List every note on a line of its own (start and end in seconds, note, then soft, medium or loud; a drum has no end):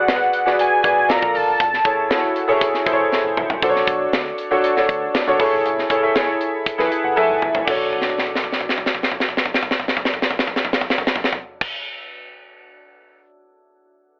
0.00 0.07 F#4 medium
0.00 0.08 G#4 medium
0.00 0.08 B4 medium
0.00 0.09 D5 medium
0.00 0.56 F#5 medium
0.07 0.26 G#1 loud
0.07 0.41 F#4 medium
0.07 0.41 G#4 medium
0.07 0.41 B4 medium
0.07 0.41 D5 medium
0.07 snare loud
0.07 closed hi-hat medium
0.33 closed hi-hat medium
0.45 0.79 F#4 medium
0.45 0.79 G#4 medium
0.45 0.79 B4 medium
0.45 0.79 D5 medium
0.45 snare soft
0.59 1.12 G#5 loud
0.59 closed hi-hat loud
0.83 1.10 G#1 loud
0.83 1.09 F#4 medium
0.83 1.09 G#4 medium
0.83 1.09 B4 medium
0.83 1.08 D5 medium
0.83 kick medium
0.83 closed hi-hat medium
1.09 1.19 G1 medium
1.09 1.53 F4 medium
1.09 1.53 A4 medium
1.09 1.53 A#4 medium
1.09 1.53 D5 loud
1.09 1.38 A#5 loud
1.09 snare loud
1.09 closed hi-hat medium
1.22 1.36 A#1 loud
1.22 kick loud
1.35 1.44 G#1 medium
1.35 2.62 A5 loud
1.35 open hi-hat medium
1.48 1.56 G1 medium
1.60 1.78 F#1 loud
1.60 kick loud
1.60 closed hi-hat medium
1.73 snare soft
1.85 2.11 F#1 medium
1.85 2.07 E4 medium
1.85 2.07 G#4 medium
1.85 2.07 A4 medium
1.85 2.07 C#5 medium
1.85 kick loud
1.85 closed hi-hat medium
2.10 2.29 E1 loud
2.10 2.43 E4 medium
2.10 2.43 F#4 medium
2.10 2.44 A4 medium
2.10 2.44 C#5 medium
2.10 snare loud
2.10 closed hi-hat medium
2.36 closed hi-hat medium
2.48 2.81 E4 medium
2.48 2.81 G#4 medium
2.48 2.81 A4 medium
2.48 2.82 C#5 loud
2.61 kick loud
2.61 closed hi-hat loud
2.74 snare soft
2.86 3.04 E1 medium
2.86 3.62 E4 loud
2.86 3.62 G#4 medium
2.86 3.61 A4 medium
2.86 2.93 C5 medium
2.86 kick loud
2.86 closed hi-hat medium
2.93 3.66 C#5 loud
3.12 snare medium
3.24 3.33 F#1 medium
3.37 3.46 C#2 medium
3.37 mid tom medium
3.49 3.58 C2 loud
3.49 floor tom loud
3.62 3.80 B1 medium
3.62 4.39 D4 medium
3.62 4.39 F#4 medium
3.62 4.39 A4 medium
3.62 3.69 C5 medium
3.62 kick loud
3.62 closed hi-hat medium
3.70 4.43 C#5 loud
3.76 snare soft
3.87 4.05 B1 medium
3.87 kick loud
3.87 closed hi-hat medium
4.13 4.31 D2 loud
4.13 snare loud
4.13 closed hi-hat medium
4.38 closed hi-hat medium
4.51 4.73 D4 medium
4.51 4.73 F#4 medium
4.51 4.73 A4 medium
4.51 4.73 C#5 loud
4.64 closed hi-hat medium
4.76 5.20 D4 medium
4.76 5.20 F#4 medium
4.76 5.21 A4 medium
4.76 5.21 C#5 medium
4.76 snare soft
4.89 5.07 D2 medium
4.89 kick loud
4.89 closed hi-hat medium
5.14 snare loud
5.14 closed hi-hat medium
5.27 5.36 B1 loud
5.27 5.40 D4 medium
5.27 5.40 F#4 medium
5.27 5.39 A4 medium
5.27 5.39 C#5 loud
5.39 5.49 F#1 medium
5.39 5.83 E4 loud
5.39 5.84 G#4 medium
5.39 5.84 A4 loud
5.39 5.84 C#5 loud
5.39 kick loud
5.39 open hi-hat medium
5.53 5.61 G1 loud
5.65 5.83 F#1 loud
5.65 closed hi-hat medium
5.79 snare soft
5.90 6.08 F#1 medium
5.90 6.01 E4 medium
5.90 6.01 G#4 medium
5.90 6.01 A4 medium
5.90 6.02 C#5 medium
5.90 kick loud
5.90 closed hi-hat medium
6.03 6.13 E4 medium
6.03 6.14 G#4 medium
6.03 6.14 A4 medium
6.03 6.14 E5 loud
6.15 6.33 F#1 medium
6.15 6.70 E4 medium
6.15 6.70 G#4 medium
6.15 6.70 A4 medium
6.15 6.71 C#5 loud
6.15 snare loud
6.15 closed hi-hat medium
6.41 closed hi-hat medium
6.66 muted fingered electric bass stroke soft
6.66 kick medium
6.66 closed hi-hat medium
6.78 6.88 F#2 medium
6.78 7.11 E4 medium
6.78 7.12 G#4 medium
6.78 7.12 A4 medium
6.78 7.12 B4 loud
6.78 snare soft
6.92 7.03 E5 medium
6.92 closed hi-hat medium
7.04 7.13 F#1 loud
7.04 7.16 F#5 medium
7.16 7.61 E4 loud
7.16 7.61 A4 medium
7.16 7.61 E5 loud
7.16 7.61 G#5 medium
7.16 7.64 A5 medium
7.16 high tom medium
7.29 7.38 G#1 loud
7.42 7.51 C#2 medium
7.42 mid tom medium
7.55 7.64 C2 medium
7.55 floor tom loud
7.65 11.67 B1 medium
7.65 11.66 D4 medium
7.65 11.67 F#4 medium
7.65 11.67 A4 medium
7.65 kick medium
7.65 crash medium
7.70 11.68 C#5 medium
7.93 floor tom soft
8.01 snare soft
8.10 floor tom soft
8.18 snare soft
8.27 floor tom soft
8.35 snare medium
8.44 floor tom medium
8.52 snare medium
8.61 floor tom medium
8.69 snare medium
8.78 floor tom medium
8.86 snare medium
8.95 floor tom medium
9.03 snare medium
9.12 floor tom medium
9.20 snare medium
9.29 floor tom medium
9.37 snare medium
9.45 floor tom medium
9.54 snare medium
9.63 floor tom medium
9.71 snare medium
9.80 floor tom medium
9.88 snare medium
9.97 floor tom medium
10.05 snare medium
10.14 floor tom medium
10.22 snare medium
10.30 floor tom medium
10.39 snare medium
10.47 floor tom medium
10.56 snare medium
10.65 floor tom medium
10.73 snare medium
10.81 floor tom medium
10.90 snare medium
10.98 floor tom medium
11.07 snare medium
11.16 floor tom loud
11.24 snare medium
11.33 floor tom medium
11.61 kick loud
11.61 crash medium